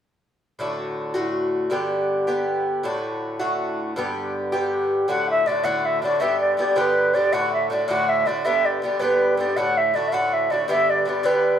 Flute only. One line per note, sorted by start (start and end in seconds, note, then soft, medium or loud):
5.09 5.28 F#5 medium
5.30 5.49 E5 medium
5.47 5.66 D5 medium
5.64 5.87 F#5 medium
5.85 6.03 E5 medium
6.04 6.22 D5 medium
6.21 6.40 E5 medium
6.41 6.57 D5 medium
6.59 6.78 D5 medium
6.77 7.16 B4 medium
7.14 7.34 D5 medium
7.33 7.53 F#5 loud
7.53 7.70 E5 medium
7.71 7.88 D5 medium
7.89 8.11 F#5 loud
8.09 8.28 E5 medium
8.27 8.47 D5 medium
8.45 8.67 E5 loud
8.66 8.82 D5 medium
8.83 9.01 D5 medium
9.00 9.38 B4 medium
9.39 9.58 D5 medium
9.57 9.79 F#5 loud
9.77 9.97 E5 medium
9.95 10.10 D5 medium
10.08 10.15 E5 medium
10.13 10.35 F#5 medium
10.33 10.52 E5 medium
10.51 10.69 D5 medium
10.70 10.91 E5 loud
10.90 11.07 D5 medium
11.07 11.27 D5 medium
11.26 11.57 B4 medium